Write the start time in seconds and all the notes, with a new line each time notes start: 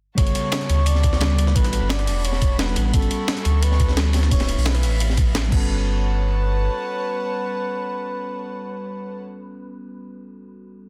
0.15 G1 C#3 G3 B3 C#5 F#5 A5 B5 C#6, kick, closed hi-hat, ride
0.19 F#4 A4
0.27 closed hi-hat
0.35 closed hi-hat, ride
0.52 snare, closed hi-hat, ride
0.61 closed hi-hat
0.69 D2, closed hi-hat, ride
0.86 D5, closed hi-hat, ride
0.95 snare
1.03 kick, closed hi-hat, ride
1.13 snare
1.20 C#3 G3 B3 F#4 A4, snare, closed hi-hat, ride
1.30 ride
1.39 closed hi-hat, ride
1.47 snare
1.53 A1 G3 B3 D4 B4 A5, kick, closed hi-hat, ride
1.57 F#4 A4
1.65 snare, closed hi-hat
1.73 closed hi-hat, ride
1.82 G1
1.90 D5, snare, closed hi-hat, ride
1.98 snare, closed hi-hat, ride
2.07 E1, closed hi-hat, open hi-hat
2.25 C#5, closed hi-hat, ride
2.32 snare
2.41 kick, closed hi-hat, ride
2.58 G3 B3 D4 F#4 A4 B4, snare, closed hi-hat, ride
2.68 snare
2.76 A1, closed hi-hat, ride
2.87 B4
2.91 G1 G3 B3 C#4 A4 A5 C#6, kick, closed hi-hat, ride
2.95 F#4 A4
3.02 closed hi-hat
3.11 closed hi-hat, ride
3.28 snare, closed hi-hat, ride
3.37 closed hi-hat
3.45 D2, closed hi-hat, ride
3.62 B4, closed hi-hat, ride
3.71 snare
3.80 kick, closed hi-hat, ride
3.88 snare
3.96 G3 B3 C#4 F#4 A4, snare, closed hi-hat, ride
4.05 ride
4.13 snare, open hi-hat, ride
4.23 snare, ride
4.29 D1 A3 B3 D4 C#5 E5 F5 B5, kick, closed hi-hat, open hi-hat
4.33 F4 B4
4.40 snare, closed hi-hat, ride
4.48 closed hi-hat, ride
4.58 B1, open hi-hat
4.65 B4, snare, closed hi-hat, ride
4.75 snare, closed hi-hat, ride
4.83 A1, closed hi-hat, open hi-hat
5.00 closed hi-hat, ride
5.10 snare
5.17 kick, closed hi-hat, ride
5.35 snare, closed hi-hat, ride
5.44 snare
5.48 G3 B3
5.52 G1 C#4 F#4 B4 C#5 F#5 A5, kick, crash
5.56 A4